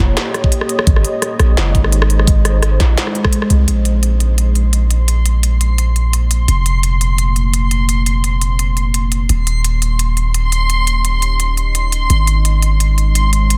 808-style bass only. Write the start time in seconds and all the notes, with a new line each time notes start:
0.00 F1
0.87 G#1
1.40 A#1
1.57 F#1
1.75 G#1
2.80 A#1
3.50 C2
3.68 A#1
6.48 F1
9.29 D#1
12.10 G#1